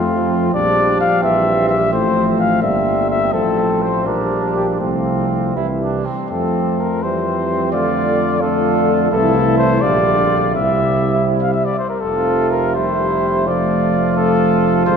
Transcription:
Already playing: F2 F3 A3 C4 F4
0.53 A#1 F3 G3 D4 D5
1.00 F5
1.21 A#1 E3 G3 C4 E5
1.69 E5
1.92 A1 F3 A3 C4 C5
2.40 F5
2.62 G1 G3 A#3 C4 E5
3.10 E5
3.32 A1 F3 A3 C4 A4
3.82 C5
4.06 A#1 F3 G3 D4 A#4
4.56 G4
4.80 C2 F3 A3 C4 F4
5.55 C2 E3 G3 E4
5.81 D4
6.05 C4
6.30 F2 F3 A3 C4 A4
6.80 A#4
7.02 E3 G3 C4 C5
7.72 D3 A3 F4 D5
8.40 D3 A3 F4 A4
9.11 C2 E3 A3 E4 A4
9.58 C5
9.81 A#1 D3 G3 F4 D5
10.54 C2 C3 G3 E4 E5
11.42 F5
11.53 E5
11.65 D5
11.78 C5
11.89 A#4
12.00 F1 F3 F4 A4
12.05 C3
12.50 A#4
12.75 G3 E4 C5
13.47 F3 A3 F4 D5
14.16 A4
14.86 G#1 G#3 C5

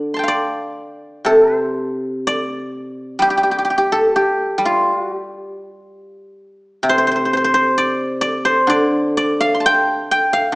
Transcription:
Already playing: D3 D5
0.14 A5 C6
0.19 G5
0.23 F5
0.28 D5
1.25 C3 A4
1.56 C5
2.27 D5
3.19 G3 G4
3.30 G4
3.37 G4
3.43 G4
3.51 G4
3.59 G4
3.65 G4
3.70 G4
3.78 G4
3.92 A4
4.16 G4
4.58 G3
4.65 F4
4.97 F#4
5.16 G4
6.83 C3
6.89 C5
6.98 C5
7.07 C5
7.11 C5
7.16 C5
7.25 C5
7.33 C5
7.44 C5
7.54 C5
7.78 D5
8.21 D5
8.45 C5
8.67 D3 D5
9.17 D5
9.41 F5
9.55 C6
9.60 A5
9.66 G5
10.11 G5
10.33 F5

